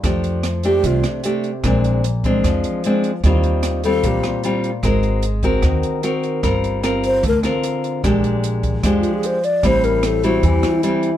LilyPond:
<<
  \new Staff \with { instrumentName = "Alto flute" } { \time 4/4 \key bes \lydian \tempo 4 = 150 r4. g'8 f'8 r4. | r1 | r4. a'8 g'8 r4. | r1 |
r4. c''8 bes'8 r4. | r2 \tuplet 3/2 { r8 f'8 gis'8 } c''8 d''8 | c''8 bes'8 a'8 fis'8 g'4 r4 | }
  \new Staff \with { instrumentName = "Nylon-string guitar" } { \time 4/4 \key bes \lydian << { <a d' g'>4 r8 <a d' g'>4. <a d' g'>8 r8 | <aes c' d'>4 r8 <aes c' d'>4. <aes c' d'>8 r8 | <g c' f'>4. <g c' f'>4. <g c' f'>8 r8 | <bis fis' ais'>4 r8 <bis fis' ais'>4. <bis fis' ais'>4 |
<c' f' bes'>4 <c' f' bes'>4 r8 <c' f' bes'>4. | <gis d' g'>2 <gis d' g'>4. r8 | <g c' e'>4. <g c' e'>4. <g c' e'>8 r8 | } \\ { f2 c2 | bes,2 f2 | ees2 bes,2 | gis2 dis2 |
g2 d2 | bes,2 f2 | a,2 e2 | } >> }
  \new Staff \with { instrumentName = "Upright bass" } { \clef bass \time 4/4 \key bes \lydian f,2 c,8 r4. | bes,,2 f,8 r4. | ees,2 bes,,8 r4. | gis,,2 dis,8 r4. |
g,,2 d,8 r4. | bes,,2 f,8 r4. | a,,2 e,8 r4. | }
  \new DrumStaff \with { instrumentName = "Drums" } \drummode { \time 4/4 <hh bd ss>8 hh8 <hh ss>8 hh8 <hh bd>8 <hh ss>8 hh8 hh8 | <hh bd ss>8 hh8 hh8 <hh bd>8 <hh bd ss>8 hh8 hh8 hh8 | <hh bd ss>8 hh8 <hh ss>8 hh8 <hh bd>8 <hh ss>8 hh8 hh8 | <hh bd ss>8 hh8 hh8 <hh bd>8 <hh bd ss>8 hh8 hh8 hh8 |
<hh bd ss>8 hh8 <hh ss>8 hh8 <hh bd>8 <hh ss>8 hh8 hh8 | <hh bd ss>8 hh8 hh8 <hh bd>8 <hh bd ss>8 hh8 hh8 hh8 | <hh bd ss>8 hh8 <hh ss>8 hh8 <hh bd>8 <hh ss>8 hh8 hh8 | }
>>